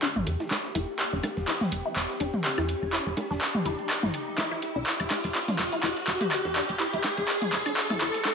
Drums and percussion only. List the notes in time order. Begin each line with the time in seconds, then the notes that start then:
0.03 clap, ride
0.16 mid tom
0.27 closed hi-hat, ride
0.40 snare
0.51 snare, clap, open hi-hat, low bongo
0.64 snare
0.75 closed hi-hat, ride
0.99 clap, ride
1.23 closed hi-hat, ride, low bongo, high woodblock
1.37 snare
1.48 snare, clap, ride
1.61 snare, mid tom
1.72 closed hi-hat, ride
1.96 clap, ride
2.10 snare
2.20 closed hi-hat, ride
2.34 mid tom
2.44 snare, clap, ride
2.58 snare, high woodblock
2.69 closed hi-hat, ride
2.93 clap, ride
3.17 closed hi-hat, ride, low bongo
3.30 snare
3.41 snare, clap, ride
3.55 mid tom, ride
3.65 closed hi-hat, ride
3.79 ride
3.90 clap, ride, high woodblock
4.03 mid tom
4.14 closed hi-hat, ride
4.38 clap, ride, low bongo
4.52 snare
4.62 closed hi-hat, ride
4.86 clap, ride
5.00 closed hi-hat, high woodblock
5.10 clap, closed hi-hat, ride, low bongo
5.24 snare, closed hi-hat
5.35 snare, clap, ride
5.48 snare, closed hi-hat, mid tom
5.59 clap, closed hi-hat, ride
5.72 closed hi-hat
5.83 clap, ride
5.97 snare, closed hi-hat
6.07 clap, closed hi-hat, ride
6.21 closed hi-hat, mid tom
6.31 snare, clap, ride, high woodblock
6.45 snare
6.56 clap, closed hi-hat, ride
6.69 closed hi-hat
6.80 clap, ride
6.93 closed hi-hat
7.04 clap, closed hi-hat, ride, low bongo
7.18 snare, closed hi-hat
7.28 snare, clap, ride
7.42 closed hi-hat, mid tom, ride
7.53 clap, closed hi-hat, ride
7.66 closed hi-hat, ride, high woodblock
7.77 clap, ride
7.90 closed hi-hat, mid tom
8.01 clap, closed hi-hat, ride
8.14 snare, closed hi-hat
8.25 snare, clap, open hi-hat, low bongo